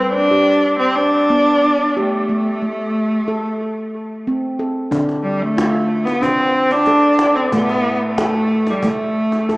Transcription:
Already playing: handpan G3 B4, cello C4
0.13 cello D4
0.31 handpan G4
0.79 cello C4
0.95 cello D4
1.30 handpan B3
1.97 cello A3, handpan G4
2.29 handpan A3
2.62 handpan A3
3.28 handpan A4
4.27 handpan C4
4.59 handpan A4
4.91 handpan D3 D4, cajon bass
5.09 cajon slap
5.23 cello G3
5.42 cello A3
5.57 handpan F4, cajon bass, cajon slap
5.74 cajon slap
6.05 cello B3, cajon slap
6.22 cello C4, handpan D4, cajon bass
6.71 cello D4, cajon slap
6.86 handpan A4, cajon bass, cajon slap
7.19 cajon slap
7.36 cello C4
7.52 handpan A2 A3, cello B3, cajon bass
7.69 cajon slap
7.96 cello B3
8.04 cello A3
8.18 handpan A4, cajon bass, cajon slap
8.35 cajon slap
8.67 cello G3, cajon slap
8.83 handpan A3, cajon bass
8.87 cello A3
9.32 cajon slap
9.49 handpan A4, cajon bass, cajon slap

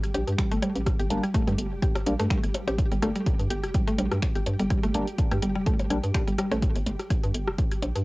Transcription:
Already playing: synth texture G3 G4
0.04 closed hi-hat, claves
0.14 fm bass A#1, synth arpeggio sound G4, closed hi-hat, percussion blips
0.27 fm bass G2, closed hi-hat
0.38 synth arpeggio sound G3, finger snap, kick, cross-stick, closed hi-hat
0.51 fm bass G1, synth arpeggio sound A3, closed hi-hat
0.62 synth arpeggio sound G3, closed hi-hat, percussion blips, claves
0.75 fm bass A1, closed hi-hat
0.86 kick, cross-stick, closed hi-hat
0.99 fm bass G1, synth arpeggio sound G4, closed hi-hat
1.10 fm bass G1, synth stab G3 A#3 D4, closed hi-hat, percussion blips
1.24 synth arpeggio sound G3, closed hi-hat, claves
1.34 synth arpeggio sound A3, kick, closed hi-hat
1.47 fm bass G2, synth arpeggio sound G3, cross-stick, closed hi-hat, percussion blips
1.58 fm bass G1, closed hi-hat
1.71 fm bass F1
1.82 synth arpeggio sound G4, kick, closed hi-hat, claves
1.96 cross-stick, closed hi-hat, percussion blips
2.06 fm bass A#1, synth arpeggio sound G3, synth stab G3 A#3 D4, closed hi-hat
2.19 fm bass G2, synth arpeggio sound A3, closed hi-hat
2.30 synth arpeggio sound G3, finger snap, kick, closed hi-hat
2.43 fm bass G1, closed hi-hat, claves
2.54 cross-stick, closed hi-hat, percussion blips
2.67 fm bass A1, synth arpeggio sound G4, closed hi-hat, percussion blips
2.78 kick, closed hi-hat
2.91 fm bass G1, synth arpeggio sound G3, closed hi-hat
3.02 fm bass G1, synth stab G3 A#3 D4, synth arpeggio sound A3, cross-stick, closed hi-hat, percussion blips, claves
3.16 synth arpeggio sound G3, closed hi-hat
3.26 kick, closed hi-hat
3.39 fm bass G2, closed hi-hat
3.50 fm bass G1, synth arpeggio sound G4, closed hi-hat
3.63 fm bass F1, cross-stick, closed hi-hat, claves
3.74 synth arpeggio sound G3, kick, closed hi-hat
3.87 synth arpeggio sound A3, closed hi-hat
3.98 fm bass A#1, synth arpeggio sound G3, closed hi-hat, percussion blips
4.12 fm bass G2, cross-stick, closed hi-hat
4.22 finger snap, kick, closed hi-hat, claves
4.35 fm bass G1, synth arpeggio sound G4, closed hi-hat
4.46 fm bass G2, closed hi-hat, percussion blips
4.59 fm bass G1, synth arpeggio sound G3, closed hi-hat
4.70 synth arpeggio sound G3, kick, closed hi-hat, claves
4.83 fm bass G1, synth arpeggio sound A3, cross-stick, closed hi-hat
4.94 fm bass G1, synth stab G3 A#3 D4, closed hi-hat, percussion blips
5.07 closed hi-hat
5.18 kick, closed hi-hat
5.31 fm bass G2, synth arpeggio sound G4, cross-stick, closed hi-hat, percussion blips, claves
5.42 fm bass G1, synth arpeggio sound G3, closed hi-hat
5.55 fm bass F1, synth arpeggio sound G3
5.66 synth arpeggio sound A3, kick, closed hi-hat
5.79 closed hi-hat, percussion blips
5.90 fm bass A#1, synth stab G3 A#3 D4, cross-stick, closed hi-hat, claves
6.03 fm bass G2, closed hi-hat
6.14 synth arpeggio sound G4, finger snap, kick, closed hi-hat
6.27 fm bass G1, synth arpeggio sound G3, closed hi-hat
6.38 synth arpeggio sound G3, cross-stick, closed hi-hat, percussion blips
6.52 fm bass A1, synth arpeggio sound A3, closed hi-hat, percussion blips, claves
6.62 kick, closed hi-hat
6.76 fm bass G1, closed hi-hat
6.86 fm bass G1, closed hi-hat, percussion blips
6.99 cross-stick, closed hi-hat
7.10 kick, closed hi-hat, claves
7.24 fm bass G2, closed hi-hat
7.34 fm bass G1, closed hi-hat
7.48 fm bass F1, cross-stick
7.58 kick, closed hi-hat
7.71 closed hi-hat, claves
7.82 fm bass A#1, closed hi-hat, percussion blips
7.95 fm bass G2, closed hi-hat

